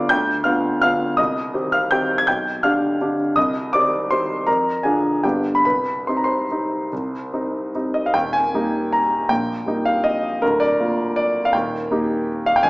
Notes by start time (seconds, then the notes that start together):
Already playing: D2 D3 B3 F4 D5 F5 D6 E6 F6
0.09 D2 G5 G6
0.44 D3 B3 F4 F5 F6
0.82 D3 B3 F4 F5 F6
1.17 C2 D#5 D#6
1.54 D#3 C4 G4
1.72 F5 F6
1.91 D#3 C4 G4 G5 G6
2.18 G#6
2.27 B1 G5 G6
2.63 D3 D4 G4 F5 F6
3.01 D3 D4 G4
3.36 C2 D#5 D#6
3.73 D#3 C4 G4 D5 D6
4.11 D#3 C4 G4 C5 C6
4.47 F2 A#4 A#5
4.83 D3 D4 F4 G#4 G#5
5.24 G2 D3 B3 D4 G4 G5
5.55 B5
5.65 C2 B4 B5
6.07 C3 C4 D#4 C6
6.17 A#5
6.24 C5 C6
6.51 C3 C4 D#4
6.93 C2
7.33 C3 C4 D#4
7.75 C3 C4 D#4
7.94 D#5
8.06 F5
8.14 D#1 D#2 G5
8.33 G#5
8.54 G3 A#3 D#4
8.93 A#5
9.29 A#1 A#2 G5
9.66 G3 A#3 D#4
9.85 F5
10.04 D#5
10.42 D1 D2 A#4
10.60 D5
10.80 A#3 F4
11.16 D5
11.45 F5
11.53 D#1 D#2 G5
11.91 A#3 D#4 G4
12.46 F5
12.56 G5
12.63 F1 F2 G#5